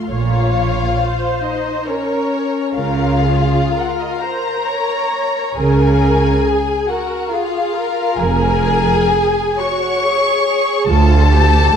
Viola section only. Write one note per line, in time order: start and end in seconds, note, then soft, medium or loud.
0.10 0.96 C#5 soft
0.99 1.87 C5 soft
1.87 2.74 A#4 medium
2.76 3.21 A#4 medium
3.23 3.71 G#4 soft
3.71 4.20 A#4 soft
4.20 4.67 C5 soft
4.67 5.57 C#5 medium
5.57 6.44 A#4 medium
6.45 6.89 G#4 soft
6.89 7.32 A#4 soft
7.33 7.75 G#4 medium
7.76 9.11 A#4 medium
9.11 9.59 G#4 medium
9.59 10.03 F#4 medium
10.03 10.44 G#4 medium
10.45 10.87 G#4 medium
10.87 11.30 F4 medium
11.30 11.73 G4 medium
11.73 11.77 A4 medium